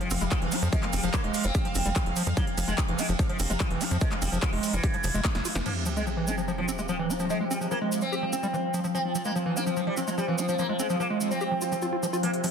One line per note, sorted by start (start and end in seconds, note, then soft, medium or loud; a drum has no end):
0.00 5.65 F3 medium
0.00 0.03 F3 medium
0.00 0.07 F3 medium
0.00 5.68 F5 medium
0.00 closed hi-hat medium
0.10 0.18 F1 loud
0.10 0.18 C3 medium
0.10 0.19 C4 medium
0.10 0.13 C4 loud
0.10 open hi-hat loud
0.10 ride medium
0.10 shaker loud
0.21 0.28 F1 medium
0.21 0.28 C3 medium
0.21 0.24 G#3 medium
0.21 0.37 E4 medium
0.21 closed hi-hat medium
0.21 shaker medium
0.31 0.34 F3 loud
0.31 0.38 F3 loud
0.31 kick loud
0.31 clap loud
0.31 closed hi-hat medium
0.31 ride medium
0.31 shaker soft
0.42 0.49 F1 medium
0.42 0.48 C3 medium
0.42 0.54 E3 medium
0.42 closed hi-hat medium
0.52 0.59 C3 medium
0.52 0.56 G4 loud
0.52 open hi-hat loud
0.52 ride medium
0.52 shaker medium
0.62 0.69 F2 medium
0.62 0.69 C3 medium
0.62 0.68 F3 medium
0.62 closed hi-hat medium
0.62 shaker medium
0.73 0.77 F3 loud
0.73 0.79 G#3 medium
0.73 kick loud
0.73 closed hi-hat medium
0.73 ride medium
0.73 shaker soft
0.83 0.90 C3 medium
0.83 0.87 G#3 medium
0.83 1.24 A#3 medium
0.83 clap soft
0.83 closed hi-hat medium
0.93 1.00 F1 loud
0.93 1.00 G3 medium
0.93 0.96 C4 loud
0.93 open hi-hat loud
0.93 ride medium
0.93 shaker medium
1.03 1.10 F1 medium
1.03 1.10 C3 medium
1.03 1.09 F3 medium
1.03 closed hi-hat medium
1.03 shaker soft
1.14 1.16 F3 loud
1.14 1.20 A#3 loud
1.14 kick loud
1.14 clap loud
1.14 closed hi-hat medium
1.14 ride medium
1.14 shaker soft
1.24 1.31 F1 medium
1.24 1.31 C3 medium
1.24 1.46 G#3 medium
1.24 closed hi-hat medium
1.34 1.41 C3 medium
1.34 open hi-hat loud
1.34 ride medium
1.34 shaker medium
1.43 1.52 F1 medium
1.43 1.47 F3 loud
1.43 2.29 C4 loud
1.43 closed hi-hat medium
1.43 shaker medium
1.54 1.57 G4 loud
1.54 kick loud
1.54 closed hi-hat medium
1.54 ride medium
1.54 shaker soft
1.65 1.67 F3 medium
1.65 closed hi-hat medium
1.75 1.82 F1 loud
1.75 1.78 C4 loud
1.75 open hi-hat loud
1.75 ride medium
1.75 shaker medium
1.85 1.93 F1 medium
1.85 1.90 G3 loud
1.85 closed hi-hat medium
1.85 shaker medium
1.96 1.98 E3 medium
1.96 kick loud
1.96 clap loud
1.96 closed hi-hat medium
1.96 ride medium
1.96 shaker soft
2.06 2.13 F1 medium
2.06 closed hi-hat medium
2.16 2.22 F3 loud
2.16 open hi-hat loud
2.16 ride medium
2.16 shaker medium
2.26 2.34 F2 medium
2.26 2.29 F3 loud
2.26 shaker soft
2.37 2.41 F3 medium
2.37 2.44 A#3 loud
2.37 kick loud
2.37 closed hi-hat medium
2.37 ride medium
2.37 shaker soft
2.47 2.54 C3 medium
2.47 closed hi-hat medium
2.58 2.65 F1 loud
2.58 2.64 C3 medium
2.58 2.60 F3 loud
2.58 open hi-hat loud
2.58 ride medium
2.58 shaker medium
2.68 2.75 F1 medium
2.68 2.74 G#3 medium
2.68 2.74 G#3 loud
2.68 closed hi-hat medium
2.68 shaker medium
2.78 2.85 C3 medium
2.78 2.80 F3 loud
2.78 kick loud
2.78 clap loud
2.78 closed hi-hat loud
2.78 ride medium
2.78 shaker soft
2.88 2.95 F1 medium
2.88 2.95 C3 medium
2.88 3.00 E3 medium
2.88 closed hi-hat medium
2.99 3.05 G#3 medium
2.99 3.03 G4 loud
2.99 open hi-hat loud
2.99 ride medium
2.99 shaker medium
3.09 3.16 F1 medium
3.09 3.15 C3 medium
3.09 3.13 F3 medium
3.09 closed hi-hat medium
3.09 shaker soft
3.19 3.26 C3 medium
3.19 3.23 F3 loud
3.19 kick loud
3.19 closed hi-hat loud
3.19 ride medium
3.19 shaker soft
3.29 3.36 F3 medium
3.29 3.32 F3 medium
3.29 closed hi-hat medium
3.39 3.47 F1 loud
3.39 3.46 C3 medium
3.39 3.42 C4 loud
3.39 open hi-hat loud
3.39 ride medium
3.39 shaker medium
3.50 3.57 F1 medium
3.50 3.57 C3 medium
3.50 3.52 G#3 medium
3.50 closed hi-hat medium
3.50 shaker soft
3.60 3.67 F3 loud
3.60 3.63 F3 loud
3.60 kick loud
3.60 clap loud
3.60 closed hi-hat loud
3.60 ride medium
3.60 shaker soft
3.70 3.78 F1 medium
3.70 3.77 C3 medium
3.70 3.82 E3 medium
3.70 closed hi-hat medium
3.81 3.87 C3 medium
3.81 3.85 G4 loud
3.81 open hi-hat loud
3.81 ride medium
3.81 shaker medium
3.91 3.98 F2 medium
3.91 3.98 C3 medium
3.91 3.97 F3 medium
3.91 closed hi-hat medium
3.91 shaker soft
4.01 4.05 F3 loud
4.01 4.08 G#3 medium
4.01 kick loud
4.01 closed hi-hat loud
4.01 ride medium
4.01 shaker soft
4.12 4.18 C3 medium
4.12 4.16 G#3 medium
4.12 clap soft
4.12 closed hi-hat medium
4.22 4.29 F1 loud
4.22 4.29 G3 medium
4.22 4.24 C4 loud
4.22 open hi-hat loud
4.22 ride medium
4.22 shaker medium
4.32 4.39 F1 medium
4.32 4.39 C3 medium
4.32 4.38 F3 medium
4.32 closed hi-hat medium
4.32 shaker soft
4.42 4.49 F3 loud
4.42 4.45 F3 loud
4.42 kick loud
4.42 clap loud
4.42 closed hi-hat loud
4.42 shaker soft
4.53 4.60 F1 medium
4.53 4.59 C3 medium
4.53 4.75 G#3 medium
4.53 open hi-hat medium
4.63 4.70 C3 medium
4.63 open hi-hat loud
4.63 ride medium
4.63 shaker medium
4.73 4.80 F1 medium
4.73 5.58 E3 loud
4.73 4.76 F3 loud
4.73 closed hi-hat medium
4.73 shaker soft
4.84 4.86 G4 loud
4.84 kick loud
4.84 closed hi-hat loud
4.84 ride medium
4.84 shaker soft
4.94 4.96 F3 medium
4.94 closed hi-hat medium
5.04 5.11 F1 loud
5.04 5.08 F3 medium
5.04 open hi-hat loud
5.04 ride medium
5.04 shaker medium
5.14 5.21 F1 medium
5.14 5.20 G#3 loud
5.14 closed hi-hat medium
5.14 shaker medium
5.24 5.27 G#3 loud
5.24 kick loud
5.24 snare medium
5.24 clap loud
5.24 closed hi-hat loud
5.24 ride medium
5.24 shaker soft
5.35 5.42 F1 medium
5.35 5.37 G3 medium
5.35 snare medium
5.35 closed hi-hat medium
5.45 5.48 F4 medium
5.45 open hi-hat loud
5.45 ride medium
5.45 shaker medium
5.55 5.62 F1 medium
5.55 5.59 E3 medium
5.55 snare medium
5.55 closed hi-hat medium
5.55 shaker soft
5.66 5.70 F3 medium
5.66 12.22 F3 medium
5.66 5.72 A#3 loud
5.66 12.22 C4 medium
5.66 12.51 F4 medium
5.66 crash medium
5.66 sub drop medium
5.66 shaker soft
5.74 5.83 C3 medium
5.74 12.51 C5 medium
5.82 12.51 F5 medium
5.86 5.93 C3 medium
5.86 5.89 F3 loud
5.86 shaker medium
5.97 6.03 G#3 medium
5.97 shaker medium
6.07 6.13 C3 medium
6.07 6.09 F3 loud
6.07 shaker soft
6.17 6.24 C3 medium
6.17 6.29 E3 medium
6.27 6.34 G#3 medium
6.27 6.31 G4 medium
6.27 shaker medium
6.38 6.44 C3 medium
6.38 6.42 F3 medium
6.38 shaker soft
6.48 6.55 C3 medium
6.48 6.52 F3 loud
6.48 shaker soft
6.58 6.61 F3 medium
6.58 6.65 F3 medium
6.68 6.75 C3 medium
6.68 6.71 C4 loud
6.68 shaker medium
6.79 6.85 C3 medium
6.79 6.81 G#3 medium
6.79 shaker medium
6.88 6.91 F3 loud
6.88 6.96 F3 medium
6.88 shaker soft
6.99 7.06 C3 medium
6.99 7.11 E3 medium
7.10 7.16 C3 medium
7.10 7.14 G4 loud
7.10 shaker medium
7.19 7.27 C3 medium
7.19 7.26 F3 medium
7.19 shaker soft
7.30 7.34 F3 loud
7.30 7.37 G#3 medium
7.30 shaker soft
7.40 7.47 C3 medium
7.40 7.44 G#3 medium
7.51 7.57 G3 medium
7.51 7.53 C4 loud
7.51 shaker medium
7.61 7.68 C3 medium
7.61 7.67 F3 medium
7.61 shaker medium
7.71 7.74 F3 loud
7.71 7.78 A#3 medium
7.71 shaker soft
7.81 7.88 C3 medium
7.81 8.04 G#3 medium
7.92 7.98 C3 medium
7.92 shaker medium
8.01 8.04 F3 loud
8.01 8.86 C4 medium
8.01 shaker soft
8.12 8.15 G4 loud
8.12 shaker soft
8.23 8.25 F3 medium
8.33 8.35 C4 loud
8.33 shaker loud
8.43 8.47 G3 loud
8.43 shaker medium
8.53 8.56 E3 medium
8.53 shaker soft
8.74 8.80 F3 loud
8.74 shaker medium
8.84 8.87 F3 loud
8.84 shaker medium
8.94 8.99 F3 medium
8.94 9.01 C4 loud
8.94 shaker soft
9.05 9.11 F3 medium
9.15 9.22 F3 medium
9.15 9.17 F3 loud
9.15 shaker medium
9.25 9.31 G#3 medium
9.25 9.32 A#3 medium
9.25 shaker medium
9.36 9.42 F3 medium
9.36 9.38 F3 loud
9.36 shaker soft
9.46 9.58 E3 medium
9.46 9.53 F3 medium
9.56 9.63 A#3 medium
9.56 9.60 G4 medium
9.56 shaker loud
9.66 9.73 F3 medium
9.66 9.70 F3 medium
9.66 shaker soft
9.77 9.83 F3 medium
9.77 9.81 F3 loud
9.77 shaker soft
9.87 9.89 F3 medium
9.87 9.94 G3 medium
9.97 10.04 F3 medium
9.97 10.00 C4 loud
9.97 shaker medium
10.08 10.14 F3 medium
10.08 10.10 G#3 medium
10.08 shaker medium
10.18 10.20 F3 loud
10.18 10.24 G3 medium
10.18 shaker soft
10.28 10.40 E3 medium
10.28 10.35 F3 medium
10.38 10.45 F3 medium
10.38 10.42 G4 loud
10.38 shaker medium
10.49 10.55 F3 medium
10.49 shaker medium
10.59 10.63 F3 loud
10.59 10.66 A#3 medium
10.59 shaker soft
10.69 10.76 F3 medium
10.69 10.73 G#3 medium
10.79 10.86 G#3 medium
10.79 10.82 C4 loud
10.79 shaker medium
10.90 10.96 F3 medium
10.90 shaker medium
11.00 11.02 F3 loud
11.00 11.07 A#3 loud
11.00 shaker soft
11.10 11.17 F3 medium
11.10 11.32 G#3 medium
11.21 11.27 F3 medium
11.21 shaker medium
11.31 11.33 F3 loud
11.31 12.15 C4 medium
11.31 shaker medium
11.41 11.44 G4 loud
11.41 shaker soft
11.51 11.54 F3 medium
11.61 11.64 F4 medium
11.61 shaker loud
11.72 11.74 F3 medium
11.72 shaker medium
11.82 11.86 F4 medium
11.82 shaker soft
11.92 11.96 F4 medium
12.03 12.07 F3 medium
12.03 shaker medium
12.13 12.17 F4 loud
12.13 shaker medium
12.23 12.51 F3 medium
12.23 12.27 F3 medium
12.23 12.30 A#3 loud
12.23 12.51 C4 medium
12.23 closed hi-hat medium
12.23 shaker soft
12.34 12.40 C3 medium
12.34 closed hi-hat medium
12.44 12.51 C3 medium
12.44 12.46 F3 loud
12.44 open hi-hat loud
12.44 shaker medium